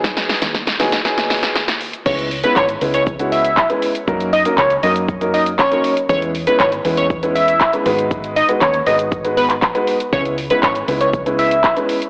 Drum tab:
CC |----------------|x---------------|----------------|----------------|
HH |-xox-xox-xox-xox|-xox-xox-xox-xox|-xox-xox-xox-xox|-xox-xox-xox-xox|
SH |xxxxxxxxxxxxxxxx|xxxxxxxxxxxxxxxx|xxxxxxxxxxxxxxxx|xxxxxxxxxxxxxxxx|
CP |----------------|----x-------x---|----x-------x---|----x-------x---|
SD |oooooooooooooo--|----------------|----------------|----------------|
BD |o---o---o-------|o---o---o---o---|o---o---o---o---|o---o---o---o---|

CC |----------------|----------------|
HH |-xox-xox-xox-xox|-xox-xox-xox-xox|
SH |xxxxxxxxxxxxxxxx|xxxxxxxxxxxxxxxx|
CP |----x------xx---|----x-------x---|
SD |----------------|----------------|
BD |o---o---o---o---|o---o---o---o---|